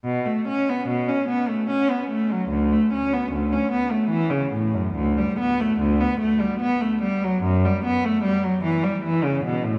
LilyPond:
\new Staff \with { instrumentName = "Cello" } { \clef bass \time 3/4 \key b \minor \tempo 4 = 74 b,16 a16 cis'16 b16 b,16 cis'16 b16 a16 cis'16 b16 a16 fis16 | d,16 a16 cis'16 b16 d,16 cis'16 b16 a16 e16 cis16 a,16 fis,16 | d,16 g16 b16 a16 d,16 b16 a16 g16 b16 a16 g16 fis16 | fis,16 g16 b16 a16 g16 fis16 e16 g16 e16 cis16 b,16 a,16 | }